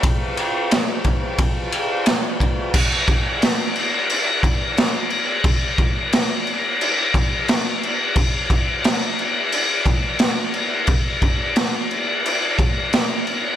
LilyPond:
\new DrumStaff \with { instrumentName = "Drums" } \drummode { \time 4/4 \tempo 4 = 88 <bd cymr>8 cymr8 <cymr sn>8 <bd cymr>8 <bd cymr>8 cymr8 <cymr sn>8 <bd cymr>8 | <cymc bd>8 <cymc bd>8 <cymc sn>8 cymc8 cymc8 <cymc bd>8 <cymc sn>8 cymc8 | <cymc bd>8 <cymc bd>8 <cymc sn>8 cymc8 cymc8 <cymc bd>8 <cymc sn>8 cymc8 | <cymc bd>8 <cymc bd>8 <cymc sn>8 cymc8 cymc8 <cymc bd>8 <cymc sn>8 cymc8 |
<cymc bd>8 <cymc bd>8 <cymc sn>8 cymc8 cymc8 <cymc bd>8 <cymc sn>8 cymc8 | }